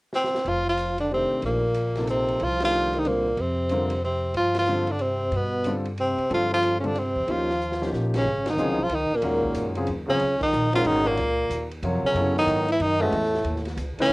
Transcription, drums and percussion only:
0.13 snare
0.24 snare
0.35 snare
0.45 ride
0.77 hi-hat pedal, ride
0.98 ride
1.42 ride
1.74 hi-hat pedal, ride
1.95 snare, ride
2.07 hi-hat pedal, ride
2.29 ride
2.40 ride
2.60 snare, ride
2.73 hi-hat pedal
2.93 ride
3.05 ride
3.37 ride
3.69 hi-hat pedal, ride
3.90 ride
4.34 ride
4.55 snare, ride
4.66 hi-hat pedal
4.87 ride
4.99 ride
5.32 ride
5.64 hi-hat pedal, ride
5.85 ride
5.98 ride
6.18 ride
6.31 ride
6.63 hi-hat pedal, ride
6.84 ride
6.95 ride
7.28 ride
7.49 snare
7.61 hi-hat pedal
7.72 snare
7.82 snare
7.93 snare
8.14 snare, ride
8.46 snare, ride
8.58 hi-hat pedal
8.89 ride
9.22 ride
9.43 kick
9.55 hi-hat pedal, ride
9.75 ride
9.87 ride
10.20 ride
10.41 kick, crash
10.52 hi-hat pedal
10.73 ride
10.85 ride
11.17 ride
11.50 hi-hat pedal, ride
11.71 ride
11.83 ride
12.16 ride
12.37 snare
12.48 hi-hat pedal, ride
12.69 ride
12.80 ride
13.12 ride
13.23 snare
13.34 snare
13.44 ride
13.56 snare
13.65 snare, ride
13.77 hi-hat pedal, ride
13.99 ride

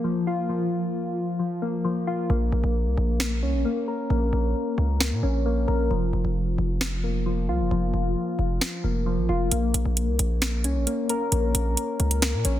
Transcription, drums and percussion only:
3.20 finger snap, snare
5.00 finger snap, snare
6.81 finger snap, snare
8.61 finger snap, snare
9.52 closed hi-hat
9.74 closed hi-hat
9.97 closed hi-hat
10.19 closed hi-hat
10.42 finger snap, snare, closed hi-hat
10.64 closed hi-hat
10.87 closed hi-hat
11.09 closed hi-hat
11.32 closed hi-hat
11.55 closed hi-hat
11.77 closed hi-hat
12.00 closed hi-hat
12.11 closed hi-hat
12.22 finger snap, snare, closed hi-hat
12.45 closed hi-hat

